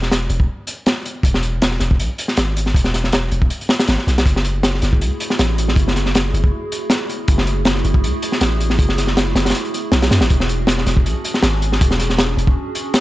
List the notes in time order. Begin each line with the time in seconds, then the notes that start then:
Already playing: E1
0.02 snare
0.12 snare, closed hi-hat
0.30 E1, closed hi-hat
0.40 kick
0.67 closed hi-hat
0.86 snare, closed hi-hat
1.05 closed hi-hat
1.23 E1, kick, closed hi-hat
1.34 snare
1.43 closed hi-hat
1.62 snare, closed hi-hat
1.71 snare
1.80 E1, snare, closed hi-hat
1.91 kick
2.00 B1, closed hi-hat
2.18 closed hi-hat
2.28 snare
2.37 G#1, snare, closed hi-hat
2.57 closed hi-hat
2.66 snare
2.75 E1, kick, closed hi-hat
2.84 snare
2.94 snare, closed hi-hat
3.04 snare
3.12 snare, closed hi-hat
3.31 E1, closed hi-hat
3.42 kick
3.50 closed hi-hat
3.61 closed hi-hat
3.69 snare, closed hi-hat
3.79 snare, closed hi-hat
3.87 G#1, snare, closed hi-hat
3.98 snare
4.07 B1, snare, closed hi-hat
4.18 snare, closed hi-hat
4.26 F#1, kick, closed hi-hat
4.36 snare
4.45 closed hi-hat
4.55 A3 E4 F#4 G#4
4.63 snare, closed hi-hat
4.75 snare
4.82 F#1, snare, closed hi-hat
4.93 kick
5.01 C#2, closed hi-hat
5.20 closed hi-hat
5.30 snare
5.39 A1, snare, closed hi-hat
5.58 closed hi-hat
5.68 snare
5.76 F#1, kick, closed hi-hat
5.88 snare
5.96 snare, closed hi-hat
6.06 A3 E4 F#4 G#4, snare
6.15 snare, closed hi-hat
6.34 F#1, closed hi-hat
6.44 kick
6.72 closed hi-hat
6.90 snare, closed hi-hat
7.09 closed hi-hat
7.28 F#1, kick, closed hi-hat
7.38 snare
7.47 closed hi-hat
7.57 A3 E4 F#4 G#4
7.65 snare, closed hi-hat
7.75 snare
7.84 F#1, closed hi-hat
7.94 kick
8.04 C#2, closed hi-hat
8.22 closed hi-hat
8.32 snare
8.41 A1, snare, closed hi-hat
8.60 closed hi-hat
8.70 snare
8.79 F#1, kick, closed hi-hat
8.89 snare
8.98 snare, closed hi-hat
9.07 A3 E4 F#4 G#4, snare
9.17 snare, closed hi-hat
9.35 F#1, snare, closed hi-hat
9.45 snare, closed hi-hat
9.50 snare, closed hi-hat
9.55 closed hi-hat
9.65 closed hi-hat
9.74 closed hi-hat
9.92 B1, snare, closed hi-hat
10.02 snare, closed hi-hat
10.11 F#2, snare, closed hi-hat
10.21 A1, snare, closed hi-hat
10.30 E1, kick, closed hi-hat
10.40 snare
10.49 closed hi-hat
10.59 C#4 D4 F#4 G#4
10.67 snare, closed hi-hat
10.78 snare
10.86 E1, snare, closed hi-hat
10.97 kick
11.05 B1, closed hi-hat
11.24 closed hi-hat
11.34 snare
11.43 G#1, snare, closed hi-hat
11.62 closed hi-hat
11.72 snare
11.81 E1, kick, closed hi-hat
11.91 snare
11.99 snare, closed hi-hat
12.10 C#4 D4 F#4 G#4, snare
12.18 snare, closed hi-hat
12.37 E1, closed hi-hat
12.47 kick
12.75 closed hi-hat
12.94 snare, closed hi-hat